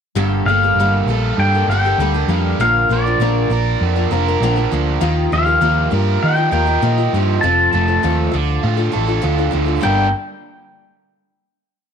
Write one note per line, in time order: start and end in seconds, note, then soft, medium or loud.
0.15 0.40 G1 medium
0.15 0.46 G2 medium
0.15 0.47 D3 medium
0.15 0.47 G3 medium
0.15 0.47 A#3 medium
0.15 0.47 G4 medium
0.15 0.47 A4 medium
0.46 0.70 G1 medium
0.46 0.63 G3 medium
0.46 0.63 A#3 medium
0.46 0.63 G4 medium
0.46 1.39 F5 loud
0.50 0.62 A4 medium
0.63 0.79 G3 soft
0.63 0.79 A#3 soft
0.63 0.78 G4 soft
0.63 0.78 A4 soft
0.76 1.00 G1 medium
0.80 1.09 G2 medium
0.80 1.09 D3 medium
0.80 1.06 G3 medium
0.80 1.07 A#3 medium
0.80 1.08 G4 medium
0.80 1.09 A4 medium
1.06 1.31 A#1 medium
1.06 1.53 G3 soft
1.06 1.54 A#3 medium
1.06 1.54 G4 medium
1.10 1.53 A4 medium
1.38 1.62 G2 medium
1.38 2.00 D4 medium
1.38 1.67 G5 medium
1.55 1.70 G3 soft
1.55 1.70 A#3 soft
1.55 1.70 G4 soft
1.55 1.69 A4 soft
1.68 1.92 G1 medium
1.68 1.85 G3 soft
1.68 1.85 A#3 medium
1.68 2.37 G5 medium
1.72 1.85 G4 medium
1.72 1.84 A4 medium
1.85 2.00 G3 soft
1.85 1.99 A#3 soft
1.85 2.00 G4 soft
1.85 2.00 A4 soft
1.98 2.23 D2 medium
1.98 2.15 G2 medium
1.98 2.15 D3 medium
1.98 2.15 G3 medium
1.98 2.14 A#3 medium
1.98 2.61 D4 medium
1.98 2.14 G4 medium
1.98 2.13 A4 medium
2.14 2.27 G3 soft
2.14 2.28 A#3 soft
2.14 2.28 G4 soft
2.14 2.29 A4 medium
2.28 2.53 F2 medium
2.28 2.59 G3 medium
2.28 2.59 A#3 medium
2.28 2.60 G4 medium
2.28 2.60 A4 medium
2.37 2.60 F5 medium
2.59 2.84 A#1 medium
2.59 2.90 A#2 medium
2.59 2.91 D3 medium
2.59 2.88 F3 medium
2.59 2.89 A#3 medium
2.59 2.90 D4 medium
2.59 2.90 A#4 medium
2.59 2.92 F5 loud
2.89 3.14 A#1 medium
2.89 3.05 F3 medium
2.89 3.06 A#3 medium
2.89 3.06 D4 medium
2.89 3.05 A#4 medium
2.89 4.69 D5 medium
3.06 3.20 F3 soft
3.06 3.20 A#3 soft
3.06 3.21 D4 medium
3.06 3.21 A#4 soft
3.19 3.44 A#1 medium
3.19 3.51 A#2 medium
3.19 3.51 D3 medium
3.19 3.49 F3 medium
3.19 3.50 A#3 medium
3.19 3.50 D4 medium
3.19 3.51 A#4 medium
3.49 3.74 A#1 medium
3.49 3.96 F3 medium
3.49 3.95 A#3 medium
3.49 3.95 D4 medium
3.49 3.95 A#4 medium
3.81 4.05 F2 medium
3.81 4.40 D4 medium
3.96 4.10 F3 soft
3.96 4.11 A#3 soft
3.96 4.11 D4 medium
3.96 4.12 A#4 medium
4.11 4.36 F1 medium
4.11 4.27 F3 medium
4.11 4.27 A#3 medium
4.11 4.27 D4 medium
4.11 4.27 A#4 medium
4.28 4.42 F3 soft
4.28 4.43 A#3 soft
4.28 4.43 D4 soft
4.28 4.43 A#4 medium
4.41 4.65 A#1 medium
4.41 4.58 A#2 medium
4.41 4.58 D3 medium
4.41 4.57 F3 medium
4.41 4.57 A#3 medium
4.41 4.55 D4 medium
4.41 4.55 A#4 medium
4.56 4.70 F3 medium
4.56 4.71 A#3 soft
4.56 4.72 D4 medium
4.56 4.72 A#4 medium
4.71 4.96 D2 medium
4.71 5.00 F3 medium
4.71 5.00 A#3 medium
4.71 5.01 D4 medium
4.71 5.02 A#4 medium
5.01 5.26 D#2 medium
5.01 5.32 D#3 medium
5.01 5.31 F3 medium
5.01 5.31 A#3 medium
5.01 5.32 F4 medium
5.01 5.32 G4 medium
5.32 5.57 D#2 medium
5.32 5.48 F3 medium
5.32 5.47 A#3 medium
5.32 5.46 F4 medium
5.32 5.45 G4 medium
5.32 6.22 F5 medium
5.46 5.61 A#3 soft
5.46 5.61 F4 soft
5.46 5.61 G4 soft
5.61 5.86 D#2 medium
5.61 5.92 D#3 medium
5.61 5.90 F3 medium
5.61 7.14 G3 medium
5.61 5.90 A#3 medium
5.61 5.91 F4 medium
5.61 5.91 G4 medium
5.91 6.17 G2 medium
5.91 6.37 F3 medium
5.91 6.37 A#3 medium
5.91 6.36 F4 medium
5.91 6.35 G4 medium
5.91 6.51 A#4 medium
6.23 6.47 D#3 medium
6.23 6.83 D#4 medium
6.23 6.51 G5 medium
6.36 6.51 A#3 soft
6.36 6.51 F4 soft
6.36 6.52 G4 soft
6.51 6.76 D#2 medium
6.51 6.68 F3 medium
6.51 6.67 A#3 medium
6.51 6.66 F4 medium
6.51 6.65 G4 medium
6.51 7.43 A#4 medium
6.51 7.41 G5 medium
6.66 6.82 A#3 soft
6.66 6.82 F4 soft
6.66 6.82 G4 soft
6.82 7.07 A#2 medium
6.82 6.98 D#3 medium
6.82 6.98 F3 medium
6.82 6.98 A#3 medium
6.82 7.44 D#4 medium
6.82 6.97 F4 medium
6.82 6.97 G4 medium
6.98 7.13 A#3 soft
6.98 7.13 F4 soft
6.98 7.13 G4 soft
7.13 7.37 G2 medium
7.13 7.42 F3 medium
7.13 7.43 A#3 medium
7.13 7.43 F4 medium
7.13 7.44 G4 medium
7.41 7.67 F1 medium
7.41 7.71 F3 medium
7.41 7.71 C4 medium
7.41 7.72 F4 medium
7.41 7.73 A4 medium
7.41 7.70 A5 loud
7.71 7.97 F1 medium
7.71 7.88 F3 medium
7.71 8.33 A3 medium
7.71 7.88 C4 medium
7.71 7.87 F4 medium
7.71 7.87 A4 medium
7.71 9.48 A5 medium
7.88 8.02 C4 soft
7.88 8.03 F4 soft
7.88 8.03 A4 medium
8.03 8.28 D#2 medium
8.03 8.30 F3 medium
8.03 8.33 C4 medium
8.03 8.32 F4 medium
8.03 8.33 A4 medium
8.31 8.57 D2 medium
8.31 9.53 D3 medium
8.31 8.77 F3 medium
8.31 8.78 D4 medium
8.31 8.77 F4 soft
8.31 8.76 A4 medium
8.63 8.87 A2 medium
8.63 9.22 F4 medium
8.77 8.90 D4 soft
8.77 8.91 F4 soft
8.77 8.92 A4 medium
8.92 9.18 A1 medium
8.92 9.07 F3 medium
8.92 9.07 D4 medium
8.92 9.07 F4 medium
8.92 9.06 A4 medium
9.07 9.21 D4 soft
9.07 9.21 F4 medium
9.07 9.22 A4 medium
9.22 9.47 D2 medium
9.22 9.37 D3 medium
9.22 9.37 F3 medium
9.22 9.38 D4 medium
9.22 9.37 F4 medium
9.22 9.37 A4 medium
9.38 9.51 D4 medium
9.38 9.51 F4 medium
9.38 9.52 A4 medium
9.51 9.77 D2 medium
9.51 9.82 D3 medium
9.51 9.67 F3 medium
9.51 9.67 D4 medium
9.51 9.67 F4 medium
9.51 9.65 A4 medium
9.66 9.82 D4 soft
9.66 9.82 F4 soft
9.66 9.82 A4 soft
9.81 10.06 G2 medium
9.81 10.06 D3 medium
9.81 10.07 G3 medium
9.81 10.07 A#3 medium
9.81 10.07 D4 medium
9.81 10.07 A4 medium
9.81 10.08 A#4 medium
9.81 10.11 G5 medium
9.85 10.12 G1 medium